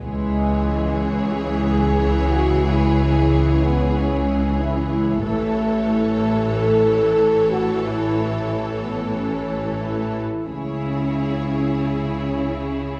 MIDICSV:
0, 0, Header, 1, 7, 480
1, 0, Start_track
1, 0, Key_signature, 4, "minor"
1, 0, Tempo, 500000
1, 12479, End_track
2, 0, Start_track
2, 0, Title_t, "Violin section"
2, 0, Program_c, 0, 48
2, 49, Note_on_c, 0, 73, 46
2, 4998, Note_off_c, 0, 73, 0
2, 5026, Note_on_c, 0, 73, 48
2, 9807, Note_off_c, 0, 73, 0
2, 10044, Note_on_c, 0, 73, 36
2, 12479, Note_off_c, 0, 73, 0
2, 12479, End_track
3, 0, Start_track
3, 0, Title_t, "Violin section"
3, 0, Program_c, 1, 48
3, 41, Note_on_c, 1, 68, 47
3, 4994, Note_off_c, 1, 68, 0
3, 5025, Note_on_c, 1, 69, 52
3, 9806, Note_off_c, 1, 69, 0
3, 10029, Note_on_c, 1, 68, 32
3, 12479, Note_off_c, 1, 68, 0
3, 12479, End_track
4, 0, Start_track
4, 0, Title_t, "French horn section"
4, 0, Program_c, 2, 60
4, 39, Note_on_c, 2, 56, 69
4, 1264, Note_off_c, 2, 56, 0
4, 1288, Note_on_c, 2, 68, 72
4, 2211, Note_on_c, 2, 66, 61
4, 2231, Note_off_c, 2, 68, 0
4, 2536, Note_off_c, 2, 66, 0
4, 2553, Note_on_c, 2, 64, 71
4, 3467, Note_off_c, 2, 64, 0
4, 3490, Note_on_c, 2, 59, 57
4, 3796, Note_off_c, 2, 59, 0
4, 3807, Note_on_c, 2, 61, 61
4, 4417, Note_off_c, 2, 61, 0
4, 4422, Note_on_c, 2, 64, 64
4, 5014, Note_on_c, 2, 57, 70
4, 5036, Note_off_c, 2, 64, 0
4, 6251, Note_off_c, 2, 57, 0
4, 6286, Note_on_c, 2, 69, 79
4, 7207, Note_on_c, 2, 66, 61
4, 7220, Note_off_c, 2, 69, 0
4, 7523, Note_off_c, 2, 66, 0
4, 7525, Note_on_c, 2, 64, 55
4, 8311, Note_off_c, 2, 64, 0
4, 8474, Note_on_c, 2, 59, 43
4, 8777, Note_off_c, 2, 59, 0
4, 8785, Note_on_c, 2, 61, 43
4, 9410, Note_off_c, 2, 61, 0
4, 9410, Note_on_c, 2, 64, 43
4, 10042, Note_off_c, 2, 64, 0
4, 10048, Note_on_c, 2, 61, 44
4, 12479, Note_off_c, 2, 61, 0
4, 12479, End_track
5, 0, Start_track
5, 0, Title_t, "Viola section"
5, 0, Program_c, 3, 48
5, 41, Note_on_c, 3, 52, 44
5, 4994, Note_off_c, 3, 52, 0
5, 5031, Note_on_c, 3, 52, 47
5, 9809, Note_off_c, 3, 52, 0
5, 10045, Note_on_c, 3, 64, 32
5, 12479, Note_off_c, 3, 64, 0
5, 12479, End_track
6, 0, Start_track
6, 0, Title_t, "Cello section"
6, 0, Program_c, 4, 48
6, 35, Note_on_c, 4, 37, 46
6, 4991, Note_off_c, 4, 37, 0
6, 5024, Note_on_c, 4, 45, 45
6, 9806, Note_off_c, 4, 45, 0
6, 10040, Note_on_c, 4, 49, 36
6, 12479, Note_off_c, 4, 49, 0
6, 12479, End_track
7, 0, Start_track
7, 0, Title_t, "Double bass section"
7, 0, Program_c, 5, 48
7, 40, Note_on_c, 5, 37, 49
7, 4994, Note_off_c, 5, 37, 0
7, 5038, Note_on_c, 5, 33, 50
7, 9812, Note_off_c, 5, 33, 0
7, 10046, Note_on_c, 5, 37, 35
7, 12479, Note_off_c, 5, 37, 0
7, 12479, End_track
0, 0, End_of_file